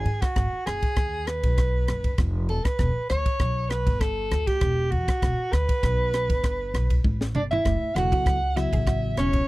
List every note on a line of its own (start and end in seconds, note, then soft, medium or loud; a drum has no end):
0.00 0.23 G#4 medium
0.05 0.21 G#2 medium
0.05 ride medium
0.21 0.65 F#4 medium
0.21 muted upright bass stroke soft
0.21 kick medium
0.21 cross-stick medium
0.21 ride medium
0.36 0.51 G#1 medium
0.36 kick medium
0.36 cross-stick medium
0.36 ride medium
0.53 muted upright bass stroke soft
0.66 0.82 F#1 medium
0.66 1.28 G#4 medium
0.66 cross-stick medium
0.66 ride medium
0.82 kick medium
0.82 ride medium
0.96 1.40 D#2 medium
0.96 kick medium
0.96 cross-stick medium
0.96 ride medium
1.27 2.22 B4 medium
1.27 cross-stick medium
1.27 ride medium
1.43 1.85 B1 medium
1.43 kick medium
1.43 ride medium
1.58 kick medium
1.58 cross-stick medium
1.58 ride medium
1.88 2.17 F#1 medium
1.88 cross-stick medium
1.88 ride medium
2.04 kick medium
2.04 ride soft
2.18 2.50 F1 medium
2.18 kick loud
2.18 cross-stick medium
2.18 ride medium
2.49 2.64 E1 medium
2.49 2.66 A4 medium
2.49 ride soft
2.64 3.09 B4 medium
2.64 muted upright bass stroke soft
2.64 kick medium
2.64 cross-stick medium
2.64 ride medium
2.79 2.94 E1 medium
2.79 kick medium
2.79 cross-stick medium
2.79 ride soft
2.96 muted upright bass stroke soft
3.09 3.25 D2 medium
3.09 3.71 C#5 medium
3.09 cross-stick medium
3.09 ride medium
3.26 kick medium
3.26 ride medium
3.39 3.83 B1 medium
3.39 kick loud
3.39 cross-stick medium
3.39 ride soft
3.70 4.02 B4 medium
3.70 cross-stick medium
3.70 ride medium
3.87 4.28 G1 medium
3.87 kick medium
3.87 ride medium
4.00 4.49 A4 medium
4.00 kick medium
4.00 cross-stick medium
4.00 ride medium
4.31 4.59 D2 medium
4.31 cross-stick medium
4.31 ride medium
4.47 4.93 G4 medium
4.47 kick medium
4.47 ride medium
4.61 4.93 E1 medium
4.61 kick medium
4.61 cross-stick medium
4.61 ride medium
4.91 5.07 E2 medium
4.91 5.54 F#4 medium
4.91 ride medium
5.08 muted upright bass stroke soft
5.08 kick medium
5.08 cross-stick medium
5.08 ride medium
5.22 5.38 E1 medium
5.22 kick medium
5.22 cross-stick medium
5.22 ride medium
5.38 muted upright bass stroke soft
5.52 5.68 D2 medium
5.52 7.08 B4 loud
5.52 cross-stick medium
5.52 ride medium
5.69 kick medium
5.69 ride medium
5.83 6.26 B1 medium
5.83 kick loud
5.83 cross-stick medium
5.83 ride medium
6.14 cross-stick medium
6.14 ride medium
6.30 6.71 G1 medium
6.30 kick medium
6.30 ride medium
6.44 kick medium
6.44 cross-stick medium
6.44 ride medium
6.74 7.01 B1 medium
6.74 cross-stick medium
6.74 ride medium
6.90 kick medium
6.90 ride soft
7.04 7.32 A1 medium
7.04 kick loud
7.04 high tom medium
7.21 snare soft
7.34 7.62 G1 medium
7.34 7.41 D4 medium
7.34 7.43 D5 medium
7.34 mid tom medium
7.51 7.93 E4 medium
7.51 7.96 E5 medium
7.51 floor tom medium
7.65 7.80 F#1 medium
7.65 7.90 A3 medium
7.65 kick medium
7.65 cross-stick medium
7.65 ride medium
7.82 muted upright bass stroke soft
7.95 8.11 E1 medium
7.95 8.38 C#3 medium
7.95 8.38 F#3 medium
7.95 8.38 B3 medium
7.95 8.38 E4 medium
7.95 8.58 F#4 medium
7.95 8.38 A4 medium
7.95 8.58 F#5 loud
7.95 cross-stick medium
7.95 ride medium
8.12 8.37 F#4 medium
8.12 kick medium
8.12 ride medium
8.26 8.69 C#2 medium
8.26 kick loud
8.26 cross-stick medium
8.26 ride soft
8.56 9.40 C#3 medium
8.56 9.41 F#3 medium
8.56 9.41 B3 medium
8.56 9.41 E4 medium
8.56 9.18 E4 medium
8.56 8.70 F#4 medium
8.56 9.41 F#4 medium
8.56 9.17 E5 medium
8.56 cross-stick medium
8.56 ride medium
8.73 9.14 A1 medium
8.73 8.84 G#4 medium
8.73 kick medium
8.73 ride medium
8.87 9.11 F#4 medium
8.87 kick medium
8.87 cross-stick medium
8.87 ride medium
9.17 9.45 E1 medium
9.17 9.48 C#4 medium
9.17 9.48 C#5 medium
9.17 cross-stick medium
9.17 ride medium
9.33 kick medium
9.33 ride medium